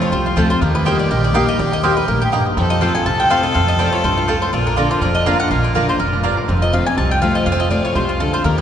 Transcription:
Already playing: steel-string acoustic guitar F2 F3 A3 C4 F4, five-string banjo C4, fiddle F4
0.02 five-string banjo F4, mandolin C#5
0.12 upright bass C2, steel-string acoustic guitar C3, five-string banjo F4, mandolin C5
0.26 mandolin F4, five-string banjo F4
0.36 upright bass D2, steel-string acoustic guitar F3 A3 C4 F4, mandolin C4 F4 A4 C5 A5, five-string banjo F4
0.50 steel-string acoustic guitar C4 F4, five-string banjo F4, mandolin C5
0.61 upright bass D#2, steel-string acoustic guitar D#3, five-string banjo A#3, fiddle G4, mandolin A#4
0.75 five-string banjo D#4, mandolin B4
0.85 steel-string acoustic guitar G3 A#3 D#4 G4, mandolin A#3 G4 C5 D#5 G5, five-string banjo A#3
0.99 five-string banjo G4, mandolin D5
1.11 upright bass A#1, steel-string acoustic guitar A#2, five-string banjo A#4, mandolin D#5
1.24 five-string banjo D#4, mandolin D5
1.34 steel-string acoustic guitar G3 A#3 D#4 G4, mandolin A#3 G4 D#5 F5 G5, five-string banjo G4
1.48 five-string banjo A#4, mandolin D#5
1.59 upright bass D#2, steel-string acoustic guitar D#3, five-string banjo D#4, mandolin D5
1.72 five-string banjo G4, mandolin D#5
1.83 steel-string acoustic guitar G3 A#3 D#4 G4, mandolin A#3 G4 C5 D#5 G5, five-string banjo A#4
1.97 five-string banjo G4, mandolin B4
2.08 upright bass A#1, steel-string acoustic guitar A2, five-string banjo A#3, mandolin A#4
2.22 five-string banjo D#4, mandolin G4
2.32 steel-string acoustic guitar G2, mandolin A#3 G4 D#5 G5, five-string banjo G4
2.46 five-string banjo D#4
2.57 upright bass F2, steel-string acoustic guitar F2, five-string banjo C4, fiddle A4
2.70 five-string banjo F4, mandolin D#5
2.81 steel-string acoustic guitar F3 A3 C4 F4, mandolin C4 F4 C5 F5 A5, five-string banjo C4
2.95 steel-string acoustic guitar C4 F4, five-string banjo F4, mandolin G#5
3.06 upright bass C2, steel-string acoustic guitar C3, five-string banjo F4, mandolin A5
3.20 five-string banjo F4, mandolin G5
3.30 steel-string acoustic guitar F3 A3 C4 F4, mandolin C4 F4 C5 F5 A5, five-string banjo F4
3.43 steel-string acoustic guitar C4 F4, five-string banjo F4, mandolin D#5
3.54 steel-string acoustic guitar F2, upright bass F2, five-string banjo C4, mandolin F5
3.68 five-string banjo F4, mandolin D#5
3.79 steel-string acoustic guitar F3 A3 C4 F4, mandolin C4 F4 C5 D5 A5, five-string banjo C4
3.93 five-string banjo F4, mandolin C#5
4.04 upright bass C2, steel-string acoustic guitar G2, five-string banjo F4, mandolin C5
4.18 mandolin F4, five-string banjo F4
4.28 steel-string acoustic guitar A2, mandolin C4 F4 A4 C5 A5, five-string banjo F4
4.42 five-string banjo F4, mandolin C5
4.53 upright bass A#1, steel-string acoustic guitar A#2, five-string banjo A#3, fiddle F4, mandolin D5
4.67 five-string banjo D4, mandolin A#4
4.76 steel-string acoustic guitar D3 A#3 D4 F4, mandolin A#3 F4 A4 D5 A#5, five-string banjo A#3
4.91 five-string banjo F4, mandolin C5
5.01 upright bass F1, steel-string acoustic guitar F2, five-string banjo A#4, mandolin D5
5.15 five-string banjo D4, mandolin D#5
5.26 steel-string acoustic guitar D3 A#3 D4 F4, mandolin A#3 F4 D5 F5 A#5, five-string banjo F4
5.40 steel-string acoustic guitar D4 F4, five-string banjo A#4, mandolin F#5
5.50 upright bass A#1, steel-string acoustic guitar A#2, five-string banjo A#3, mandolin F5
5.64 mandolin D5
5.75 steel-string acoustic guitar D3 A#3 D4 F4, mandolin A#3 F4 A#4 D5 A#5, five-string banjo A#3
5.88 steel-string acoustic guitar D4 F4, five-string banjo F4, mandolin C5
6.00 upright bass F1, steel-string acoustic guitar A2, five-string banjo A#4, mandolin D5
6.13 five-string banjo D4
6.23 steel-string acoustic guitar G2, mandolin A#3 F4 D5 A#5, five-string banjo F4
6.37 five-string banjo A#4
6.48 upright bass F1, steel-string acoustic guitar F2, five-string banjo C4, fiddle F4
6.62 five-string banjo F4, mandolin D#5
6.73 steel-string acoustic guitar F3 A3 C4 F4, five-string banjo F4, mandolin F5
6.86 steel-string acoustic guitar C4 F4, five-string banjo F4, mandolin G#5
6.97 upright bass C2, steel-string acoustic guitar C3, five-string banjo C4, mandolin A5
7.11 five-string banjo F4, mandolin G5
7.22 steel-string acoustic guitar F3 A3 C4 F4, five-string banjo C4, mandolin F5
7.35 five-string banjo F4, mandolin D#5
7.46 upright bass F1, steel-string acoustic guitar F2, five-string banjo A#3, mandolin F5
7.52 five-string banjo C4
7.60 five-string banjo F4, mandolin D#5
7.70 steel-string acoustic guitar F3 A3 C4 F4, five-string banjo F4, mandolin D5
7.85 five-string banjo F4, mandolin C#5
7.95 upright bass C2, steel-string acoustic guitar C3, five-string banjo F4, mandolin C5
8.09 five-string banjo C4, mandolin F4
8.20 steel-string acoustic guitar D3, five-string banjo F4, mandolin A4
8.33 five-string banjo F4, mandolin C5
8.44 upright bass D#2, steel-string acoustic guitar D#3, five-string banjo A#3, fiddle G4, mandolin A#4
8.58 five-string banjo D#4, mandolin B4

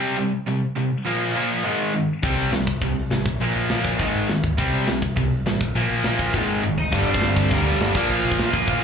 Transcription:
Already playing: overdriven electric guitar C3 G3 C4
0.18 overdriven electric guitar C3 G3
0.47 overdriven electric guitar C3 G3
0.76 overdriven electric guitar C3 G3
1.05 overdriven electric guitar A#2 F3 A#3
1.35 overdriven electric guitar A#2 F3 A#3
1.64 overdriven electric guitar G#2 D#3 G#3
1.93 overdriven electric guitar G#2 D#3
2.23 picked electric bass C2, overdriven electric guitar C3 G3 C4, kick, open hi-hat
2.38 picked electric bass C2
2.52 picked electric bass C2, overdriven electric guitar C3 G3, snare, open hi-hat
2.67 kick
2.82 picked electric bass C2, overdriven electric guitar C3 G3, kick, open hi-hat
2.96 picked electric bass C2
3.11 picked electric bass G#1, overdriven electric guitar C3 G3, snare, open hi-hat
3.26 picked electric bass A#1, kick
3.40 picked electric bass A#1, overdriven electric guitar A#2 F3 A#3, open hi-hat
3.56 picked electric bass A#1
3.70 picked electric bass A#1, overdriven electric guitar A#2 F3 A#3, snare, open hi-hat
3.85 kick
3.98 picked electric bass G#1, overdriven electric guitar G#2 D#3 G#3, kick, open hi-hat
4.15 picked electric bass G#1
4.29 picked electric bass G#1, overdriven electric guitar G#2 D#3, snare, open hi-hat
4.44 picked electric bass D2, kick
4.57 picked electric bass C2, overdriven electric guitar C3 G3 C4, kick, open hi-hat
4.73 picked electric bass C2
4.86 picked electric bass C2, overdriven electric guitar C3 G3, snare, open hi-hat
5.02 kick
5.16 picked electric bass C2, overdriven electric guitar C3 G3, kick, open hi-hat
5.32 picked electric bass C2
5.46 picked electric bass A1, overdriven electric guitar C3 G3, snare, open hi-hat
5.61 picked electric bass A#1, kick
5.75 picked electric bass A#1, overdriven electric guitar A#2 F3 A#3, open hi-hat
5.90 picked electric bass A#1
6.04 picked electric bass A#1, overdriven electric guitar A#2 F3 A#3, snare, open hi-hat
6.19 kick
6.34 picked electric bass G#1, overdriven electric guitar G#2 D#3 G#3, kick, snare
6.49 picked electric bass G#1
6.63 picked electric bass G#1, overdriven electric guitar G#2 D#3, mid tom
6.78 picked electric bass G#1, overdriven electric guitar D#4 D#5, floor tom
6.91 picked electric bass G1, overdriven electric guitar G2 D3 G3 D4 D5, kick, crash
7.08 picked electric bass G1, overdriven electric guitar C4 C5
7.14 kick
7.21 picked electric bass G1, snare, open hi-hat
7.37 picked electric bass G1, kick
7.51 picked electric bass D2, distorted electric guitar G2 D3 G3, overdriven electric guitar A#3 A#4, kick, open hi-hat
7.65 overdriven electric guitar G2 D3 G3 D4 D5
7.79 picked electric bass G1, overdriven electric guitar G2 D3 G3 D4 D5, snare, open hi-hat
7.93 picked electric bass A#1, overdriven electric guitar A#2 F3 A#3, kick, crash
8.10 picked electric bass A#1, overdriven electric guitar F4 F5
8.24 picked electric bass A#1, overdriven electric guitar F4 F5
8.31 kick
8.39 picked electric bass A#1, snare, open hi-hat
8.52 picked electric bass A#1, distorted electric guitar A#2 F3 A#3, kick
8.66 picked electric bass A#1, overdriven electric guitar A#2 F3 A#3, kick, open hi-hat
8.80 overdriven electric guitar A#3

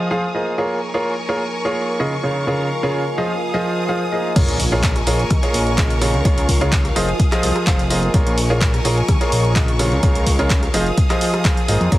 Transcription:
Already playing: ambient pad F4 A#4 D#5 G#5, violin section G#4 F5 D#6
0.11 grand piano F3 F4 G#4 C5 F5
0.34 grand piano A#3 F4 G#4 C5 D#5
0.58 grand piano A#3 F4 G#4 A#4 C#5, violin section A#4 G#5 C#6
0.94 grand piano A#3 F4 G#4 A#4 C#5
1.29 grand piano A#3 F4 G#4 A#4 C#5
1.65 grand piano A#3 F4 G#4 A#4 C#5
2.00 grand piano C#3 F4 G#4 A#4 D#5
2.23 grand piano C#3 F4 G#4 A#4 C#5, violin section A#4 F5
2.47 grand piano C#3 F4 G#4 A#4 C#5
2.83 grand piano C#3 F4 G#4 A#4 C#5
3.18 grand piano F3 F4 G#4 C5 D#5, violin section G#4 D#6
3.54 grand piano F3 F4 G#4 C5 D#5
3.89 grand piano F3 F4 G#4 C5 F5
4.12 grand piano A#3 F4 G#4 C5 D#5
4.36 analog synth bass A#1, grand piano A#3 F4 G#4 A#4 C#5, violin section A#4 G#5 C#6, kick, closed hi-hat, crash, impact
4.48 analog synth bass A#1, closed hi-hat
4.60 closed hi-hat, open hi-hat
4.72 grand piano A#3 F4 G#4 A#4 C#5
4.83 kick, snare, clap, closed hi-hat
4.96 cross-stick, closed hi-hat
5.07 analog synth bass A#1, grand piano A#3 F4 G#4 A#4 C#5, closed hi-hat, open hi-hat
5.19 closed hi-hat
5.31 analog synth bass D#2, kick, cross-stick, closed hi-hat
5.43 grand piano A#3 F4 G#4 A#4 C#5, snare, closed hi-hat
5.54 analog synth bass A#1, closed hi-hat, open hi-hat
5.67 closed hi-hat
5.78 grand piano C#3 F4 G#4 A#4 D#5, kick, snare, clap, closed hi-hat
5.90 closed hi-hat
6.01 grand piano C#3 F4 G#4 A#4 C#5, violin section F5, cross-stick, snare, closed hi-hat, open hi-hat
6.14 analog synth bass C#2, snare, closed hi-hat
6.25 analog synth bass C#2, grand piano C#3 F4 G#4 A#4 C#5, kick, closed hi-hat
6.37 analog synth bass C#2, closed hi-hat
6.49 kick, closed hi-hat, open hi-hat
6.61 grand piano C#3 F4 G#4 A#4 C#5, closed hi-hat
6.72 kick, snare, clap, closed hi-hat
6.85 cross-stick, closed hi-hat
6.96 analog synth bass F1, grand piano F3 F4 G#4 C5 D#5, violin section G#4 D#6, snare, closed hi-hat, open hi-hat
7.09 closed hi-hat
7.20 kick, closed hi-hat
7.32 grand piano F3 F4 G#4 C5 D#5, cross-stick, snare, clap, closed hi-hat
7.43 analog synth bass C2, snare, closed hi-hat, open hi-hat
7.56 cross-stick, closed hi-hat
7.67 analog synth bass F1, grand piano F3 F4 G#4 C5 F5, kick, snare, clap, closed hi-hat
7.79 closed hi-hat
7.90 grand piano A#3 F4 G#4 C5 D#5, snare, closed hi-hat, open hi-hat
8.03 closed hi-hat
8.14 analog synth bass A#1, grand piano A#3 F4 G#4 A#4 C#5, violin section A#4 G#5 C#6, kick, closed hi-hat
8.27 analog synth bass A#1, closed hi-hat
8.38 closed hi-hat, open hi-hat
8.50 grand piano A#3 F4 G#4 A#4 C#5
8.61 kick, snare, clap, closed hi-hat
8.74 cross-stick, closed hi-hat
8.85 analog synth bass A#1, grand piano A#3 F4 G#4 A#4 C#5, closed hi-hat, open hi-hat
8.97 closed hi-hat
9.08 analog synth bass D#2, kick, cross-stick, closed hi-hat
9.21 grand piano A#3 F4 G#4 A#4 C#5, snare, closed hi-hat
9.32 analog synth bass A#1, closed hi-hat, open hi-hat
9.45 closed hi-hat
9.56 grand piano C#3 F4 G#4 A#4 D#5, kick, snare, clap, closed hi-hat
9.68 closed hi-hat
9.79 grand piano C#3 F4 G#4 A#4 C#5, violin section A#4 F5, cross-stick, snare, closed hi-hat, open hi-hat
9.92 analog synth bass C#2, snare, closed hi-hat
10.03 analog synth bass C#2, grand piano C#3 F4 G#4 A#4 C#5, kick, closed hi-hat
10.15 analog synth bass C#2, closed hi-hat
10.27 kick, closed hi-hat, open hi-hat
10.39 grand piano C#3 F4 G#4 A#4 C#5, closed hi-hat
10.50 kick, snare, clap, closed hi-hat
10.63 cross-stick, closed hi-hat
10.74 analog synth bass F1, grand piano F3 F4 G#4 C5 D#5, violin section G#4 D#6, snare, closed hi-hat, open hi-hat
10.86 closed hi-hat
10.98 kick, closed hi-hat
11.10 grand piano F3 F4 G#4 C5 D#5, cross-stick, snare, clap, closed hi-hat
11.21 snare, closed hi-hat, open hi-hat
11.34 cross-stick, closed hi-hat
11.45 grand piano F3 F4 G#4 C5 F5, kick, snare, clap, closed hi-hat
11.57 closed hi-hat
11.68 analog synth bass G#1, grand piano A#3 F4 G#4 C5 D#5, snare, closed hi-hat, open hi-hat
11.81 analog synth bass F2, closed hi-hat
11.92 analog synth bass A#1, grand piano A#3 F4 G#4 A#4 C#5, violin section A#4 G#5 C#6, kick, closed hi-hat

